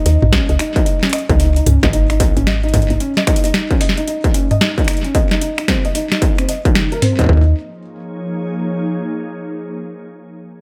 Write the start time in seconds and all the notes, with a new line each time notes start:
0.06 D#2 D#4, closed hi-hat
0.22 A#1 D#4, mid tom
0.33 C#4, kick, snare, closed hi-hat
0.49 C#2 D#5, closed hi-hat
0.59 D#4, finger snap, closed hi-hat
0.76 D#4, kick, closed hi-hat
0.86 D#4, closed hi-hat
1.03 C#4, snare, closed hi-hat
1.09 finger snap, closed hi-hat
1.13 D#5, closed hi-hat
1.18 closed hi-hat
1.29 C#2 D#4, kick, closed hi-hat
1.40 D#4, closed hi-hat
1.56 D#4, closed hi-hat
1.66 C#2 C#4, closed hi-hat, mid tom
1.83 G#1 D#5, finger snap, kick, snare, closed hi-hat
1.93 D#4, closed hi-hat
2.10 D#4, finger snap, closed hi-hat
2.20 B1 D#4, kick, closed hi-hat
2.37 G#1 C#4, closed hi-hat
2.47 D#5, snare, closed hi-hat
2.63 D#4, closed hi-hat
2.69 closed hi-hat
2.74 D#4, kick, closed hi-hat, mid tom
2.82 closed hi-hat
2.90 G#1 D#4, closed hi-hat
3.00 C#4, closed hi-hat
3.17 D#5, snare, closed hi-hat
3.27 D#4, finger snap, kick, closed hi-hat
3.36 closed hi-hat
3.44 D#4, closed hi-hat
3.54 D#4, snare, closed hi-hat
3.71 C#4, kick, closed hi-hat
3.81 D#5, closed hi-hat
3.89 snare
3.97 D#4, closed hi-hat
4.08 D#4, closed hi-hat
4.24 D#4, kick, closed hi-hat
4.34 C#4, closed hi-hat
4.51 D#5, closed hi-hat, mid tom
4.61 D#4, snare, closed hi-hat
4.78 D#4, kick, closed hi-hat
4.84 finger snap, closed hi-hat
4.88 D#4, closed hi-hat
4.93 closed hi-hat
4.97 closed hi-hat
5.04 C#4, closed hi-hat
5.15 D#5, kick, closed hi-hat
5.31 D#4, snare, closed hi-hat
5.41 D#4, closed hi-hat
5.58 D#4, finger snap, closed hi-hat
5.68 C4, kick, snare, closed hi-hat
5.85 D#5, closed hi-hat
5.95 D#4, closed hi-hat
6.12 D#4, finger snap, snare, closed hi-hat
6.22 D#4, kick, closed hi-hat
6.38 C4, finger snap, closed hi-hat
6.49 D#5, closed hi-hat
6.65 D#3, kick, closed hi-hat
6.75 D#3, snare, closed hi-hat
6.92 A#4, closed hi-hat
7.02 C4, closed hi-hat, mid tom
7.19 D#5, kick, closed hi-hat
7.21 kick
7.24 kick
7.26 kick
7.29 D#2 F3 D#4, kick
7.33 kick
7.37 A#3, kick
7.41 kick
7.48 D#4
7.54 G#4
7.62 C#5